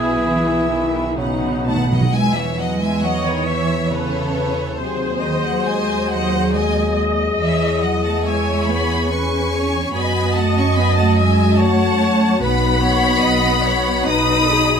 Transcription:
Already playing: B1 B2 E3 B3 E4 G#4 E5
0.23 E3
0.71 D#3
1.17 B2 C#3 F#3 B3 D#4 F#5
1.26 B2
1.34 B2
1.42 B2
1.51 B2
1.59 B2
1.65 B2 A3 F#5 A5
1.76 B2
1.85 B2
1.90 B2 F#3 D#5 F#5
2.01 B2
2.12 E2 E3 G#3 B4 G#5
2.16 E5
2.34 E3 C#5 E5
2.58 F#3 D#5 F#5
2.81 G#3 E5 G#5
3.01 F#3 C#5 D#5 F#5
3.24 D#3 B4 D#5
3.45 E3 C#5 E5
3.90 C#3 A4 B4 C#5
4.36 B4
4.79 D#2 C3 F#3 G#4 C5
5.22 D#3 C5 D#5
5.44 F#3 D#5 F#5
5.64 G#3 D#5 G#5
6.08 F#3 D#5 F#5
6.53 G#3 D#5 G#5
7.40 E2 E3 C#5 E5
7.82 F#3 D#5 F#5
8.03 A3 F#5 A5
8.24 G#3 E5 G#5
8.28 C#5
8.66 G#5 B5
8.70 B3
9.10 C#4 B4 G#5 C#6
9.54 C#5
9.92 F#2 F#3 B3 G#5 B5
9.96 F#4 D#5
10.37 A3 F#5 A5
10.57 C#4 A5 C#6
10.75 B3 G#5 B5
10.96 A3 F#5 A5
11.16 G#3 E5 G#5
11.55 F#5 A5
11.59 A3 C#5
12.42 B1 B3 D#4 B4 F#5 B5
12.82 C#5
13.22 B1 D#5
13.64 C#5
14.05 B1 D#4 B4 B5 D#6
14.50 G#4

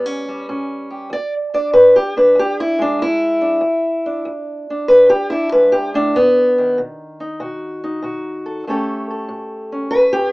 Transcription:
Already playing: A2 G3
0.06 C#4
0.28 G3
0.49 A2 C#4
0.91 G4
1.10 E2 D5
1.54 D4 D5
1.73 E2 B4
1.96 G4
2.17 D4 B4
2.35 E2
2.39 G4
2.60 E4
2.79 G#3 D4
2.99 E2 E4
3.41 D4
3.61 E2
4.06 D4
4.25 E2
4.70 D4
4.88 E2 B4
5.10 G4
5.30 D4 E4
5.52 G#2 B4
5.72 G4
5.94 A2 D4
6.15 B2 B3
6.58 D#3
6.78 B2
7.20 D#4
7.40 B2 F#4
7.84 D#4
8.02 B2 F#4
8.46 A4
8.67 A2 A3 C#4 G4 A4
9.10 A4
9.29 A2
9.72 C#4
9.91 A2 B4
10.13 G4

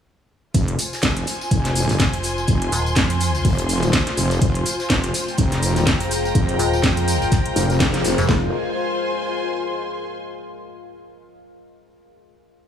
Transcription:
0.54 F1 F4, kick, closed hi-hat, tambourine, shaker
0.68 closed hi-hat
0.79 open hi-hat, tambourine, shaker
0.84 C5 G#5
0.93 snare, tambourine
1.02 F1, kick, snare, closed hi-hat, tambourine, shaker
1.17 snare, closed hi-hat
1.27 open hi-hat, tambourine, shaker
1.39 C6, tambourine
1.51 F1, kick, closed hi-hat, tambourine, shaker
1.65 snare, closed hi-hat
1.75 open hi-hat, tambourine, shaker
1.89 snare, closed hi-hat, tambourine
1.99 F1, kick, snare, closed hi-hat, tambourine, shaker
2.13 closed hi-hat
2.23 open hi-hat, tambourine, shaker
2.38 tambourine
2.48 F1, kick, closed hi-hat, tambourine, shaker
2.62 closed hi-hat
2.72 D#1, open hi-hat, tambourine, shaker
2.86 tambourine
2.96 F2, kick, snare, closed hi-hat, tambourine, shaker
3.10 closed hi-hat
3.20 open hi-hat, tambourine, shaker
3.35 tambourine
3.45 F1, kick, closed hi-hat, open hi-hat, tambourine
3.58 closed hi-hat
3.69 open hi-hat, tambourine, shaker
3.83 closed hi-hat, tambourine
3.93 kick, snare, closed hi-hat, tambourine, shaker
4.07 snare, closed hi-hat
4.17 F1, open hi-hat, tambourine, shaker
4.31 snare, closed hi-hat, tambourine
4.41 F1 G#3 F4 C5 F5, kick, closed hi-hat, tambourine, shaker
4.55 closed hi-hat
4.66 open hi-hat, tambourine, shaker
4.79 snare, tambourine
4.90 F1, kick, snare, closed hi-hat, shaker
5.04 snare, closed hi-hat
5.14 open hi-hat, tambourine, shaker
5.28 G5, tambourine
5.36 F1 A#5, kick, closed hi-hat, tambourine, shaker
5.52 snare, closed hi-hat
5.62 open hi-hat, tambourine, shaker
5.76 snare, closed hi-hat, tambourine
5.87 F1, kick, snare, closed hi-hat, tambourine, shaker
6.00 closed hi-hat
6.11 open hi-hat, tambourine, shaker
6.25 tambourine
6.35 F1 A#4, kick, closed hi-hat, tambourine, shaker
6.49 closed hi-hat
6.59 D#1, open hi-hat, tambourine, shaker
6.73 tambourine
6.83 F2, kick, snare, closed hi-hat, tambourine, shaker
6.97 closed hi-hat
7.08 open hi-hat, tambourine, shaker
7.21 snare, tambourine
7.32 kick, snare, closed hi-hat, tambourine, shaker
7.46 closed hi-hat
7.56 F1, open hi-hat, tambourine, shaker
7.70 closed hi-hat, tambourine
7.80 kick, snare, closed hi-hat, tambourine, shaker
7.94 snare, closed hi-hat
8.04 F1, open hi-hat, tambourine, shaker
8.18 F1, snare, closed hi-hat, tambourine
8.29 F1 F4, kick, snare
8.37 C5
8.44 G#5
8.51 C6

